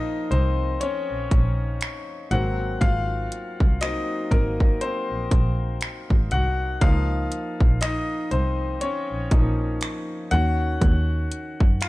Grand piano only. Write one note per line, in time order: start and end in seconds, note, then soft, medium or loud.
0.00 0.78 F3 medium
0.00 0.78 A#3 soft
0.00 0.83 C#4 soft
0.00 2.33 D#4 medium
0.00 2.33 F4 medium
0.00 2.34 A#4 medium
0.00 0.33 D#5 medium
0.00 2.33 F5 loud
0.31 0.79 C4 medium
0.31 0.83 C5 medium
0.81 2.28 C#4 medium
0.81 2.36 C#5 medium
2.31 3.01 F#3 medium
2.31 3.02 A#3 soft
2.31 3.02 C4 medium
2.31 2.79 F#4 medium
2.31 2.83 F#5 medium
2.81 3.78 F4 medium
2.81 3.77 F5 loud
3.81 4.28 F#3 soft
3.81 4.28 A#3 soft
3.81 4.28 C4 medium
3.81 4.29 D#4 medium
3.81 4.33 D#5 loud
4.31 4.79 A#3 medium
4.31 4.83 A#4 medium
4.81 6.28 C4 medium
4.81 6.27 C5 medium
6.32 6.79 F#4 medium
6.32 6.83 F#5 medium
6.81 9.30 F3 medium
6.81 9.31 A#3 medium
6.81 7.82 D#4 medium
6.81 7.78 F4 medium
6.81 7.77 F5 loud
7.81 8.29 D#4 medium
7.81 8.33 D#5 medium
8.31 8.79 C4 medium
8.31 8.83 C5 medium
8.81 10.28 C#4 medium
8.81 10.36 C#5 medium
9.32 9.78 F3 soft
9.32 9.78 A#3 soft
9.32 9.78 D#4 medium
10.31 11.89 D#3 medium
10.31 11.89 C#4 soft
10.31 11.78 F#4 medium
10.31 11.86 F#5 loud
11.82 11.89 F4 medium
11.82 11.89 F5 medium